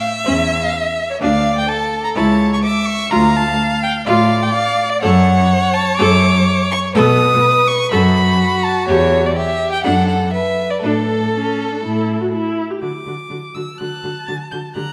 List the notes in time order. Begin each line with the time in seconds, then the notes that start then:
Already playing: E5
0.01 F5
0.24 E2 C#4 E5
0.62 F5
0.76 E5
1.10 C#5
1.21 D2 D4 D5 F5
1.58 G5
1.68 A4 A5
2.04 A#5
2.16 C#2 E4 C#5 A5
2.53 C#6
2.63 E5 D6
2.85 C#6
3.10 D2 F4 F5 A#5
3.37 A5
3.83 G5
4.06 A2 F4 D5 F5
4.42 G5
4.53 F5
4.89 D5
5.01 F#2 A4 C#5 F#5
5.73 A5
5.97 F#2 A4 D6
6.71 C#6
6.94 B2 A4 B4 D#6
7.68 C#6
7.91 F#2 F#4 A4 B5
8.64 A5
8.87 E2 G4 C#5
9.26 D5
9.36 G4 E5
9.72 G5
9.83 F#2 D4 A4 F#5
10.08 F#5
10.32 B4 E5
10.70 D5
10.81 A2 D4 A4
11.33 C#4
11.72 D4
11.83 A2 E4
12.21 F#4
12.32 E4
12.70 G4
12.82 D3 F#4 D6
13.06 D3 F#4
13.30 D3 F#4
13.54 D3 F#4 E6
13.78 D3 F#4 A5 F#6
14.04 D3 F#4
14.27 D3 F#4 A6
14.51 D3 F#4 G6
14.75 D3 G4 A#5 F#6